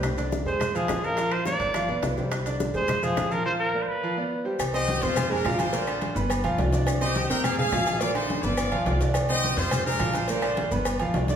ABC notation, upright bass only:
X:1
M:4/4
L:1/8
Q:1/4=211
K:Cm
V:1 name="Upright bass" clef=bass
C,,3 F,,3 B,,,2- | B,,,3 G,,,2 =B,,, C,,2- | C,,3 F,,3 B,,,2- | B,,,3 z4 z |
C,,3 F,,3 B,,,2- | B,,,3 G,,,2 =B,,, C,,2- | C,,3 F,,3 B,,,2- | B,,,3 G,,,2 =B,,, C,,2- |
C,,3 F,,3 B,,,2- | B,,,3 G,,,2 =B,,, C,,2 |]